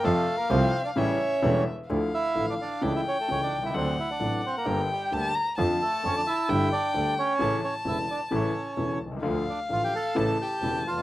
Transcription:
<<
  \new Staff \with { instrumentName = "Violin" } { \time 4/4 \key a \phrygian \tempo 4 = 130 f''2 e''4. r8 | \key d \minor f''2 g''2 | fis''2 g''4 a''8 bes''8 | a''2 g''2 |
a''2.~ a''8 r8 | f''2 a''2 | }
  \new Staff \with { instrumentName = "Bandoneon" } { \time 4/4 \key a \phrygian <a a'>8. <bes bes'>16 <c' c''>8. <d' d''>16 <cis' cis''>4. r8 | \key d \minor r8 <e' e''>8. <d' d''>16 <d' d''>8. <e' e''>16 <cis' cis''>16 <a a'>16 <cis' cis''>16 <d' d''>8 <e' e''>16 | <c' c''>8 <e' e''>16 <d' d''>8. <c' c''>16 <bes bes'>8 r16 <g g'>4 r8 | r8 <a a'>8 <cis' cis''>16 <d' d''>16 <e' e''>4 <d' d''>4 <cis' cis''>8~ |
<cis' cis''>8 <cis' cis''>8 <e' e''>8 <d' d''>8 <cis' cis''>4. r8 | r8 <d' d''>8 <f' f''>16 <g' g''>16 <a' a''>4 <g' g''>4 <f' f''>8 | }
  \new Staff \with { instrumentName = "Grand piano" } { \clef bass \time 4/4 \key a \phrygian <f, c f a f'>8 r8 <c, c f a f'>8 r8 <a,, a, cis g a e'>8 r8 <e,, e, cis g a e'>8 r8 | \key d \minor <d, d f a e'>8 r8 <a,, a, d f a e'>8 r8 <cis, cis e a e'>8 r8 <cis, cis e a e'>8 r32 b,,32 c,32 cis,32 | <d, c d fis a d'>8 r8 <a,, a, c fis a d'>8 r8 <g,, g, d g bes g'>8 r8 <d, d g bes g'>8 r8 | <f, d f a f'>8 r8 <f, d f a f'>8 r8 <g,, g, d g a g'>8 r8 <d, d g a g'>8 r8 |
<a,, a, cis e a e'>8 r8 <e,, e, cis e a e'>8 r8 <a,, a, cis e a e'>8 r8 <e,, e, cis e a e'>8 r32 b,,32 c,32 cis,32 | <d, d f a f'>8 r8 <a,, a, d f a f'>8 r8 <a,, a, cis e a e'>8 r8 <e,, e, cis e a e'>8 r32 e,32 f,32 r32 | }
  \new Staff \with { instrumentName = "Double bass" } { \clef bass \time 4/4 \key a \phrygian f,8 r8 c,8 r8 a,,8 r8 e,,8 r8 | \key d \minor d,8 r8 a,,8 r8 cis,8 r8 cis,8 c,8 | d,8 r8 a,,8 r8 g,,8 r8 d,8 r8 | f,8 r8 f,8 r8 g,,8 r8 d,8 r8 |
a,,8 r8 e,,8 r8 a,,8 r8 e,,8 c,8 | d,8 r8 a,,8 r8 a,,8 r8 e,,8 f,,8 | }
>>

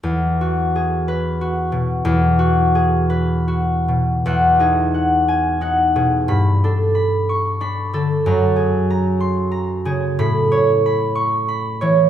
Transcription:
<<
  \new Staff \with { instrumentName = "Harp" } { \time 6/8 \key e \major \tempo 4. = 61 << { r4. b'4.~ | b'2.~ | b'4. gis''4 r8 | r4. cis'''4 r8 |
r4. c'''4 r8 | r4. cis'''4 r8 | } \\ { r2. | r2. | fis''8 gis'8 fis''4 fis''8 gis'8 | b''8 a'8 b''4 b''8 a'8 |
ais''8 gis'8 ais''4 ais''8 gis'8 | b''8 cis''8 b''4 b''8 cis''8 | } >> }
  \new Staff \with { instrumentName = "Harp" } { \clef bass \time 6/8 \key e \major e,8 fis'8 gis'4 fis'8 b,8 | e,8 fis'8 gis'8 b'8 fis'8 b,8 | e,8 dis'4. dis'8 b,8 | g,8 d'4. d'8 d8 |
fis,2~ fis,8 cis8 | a,2~ a,8 e8 | }
>>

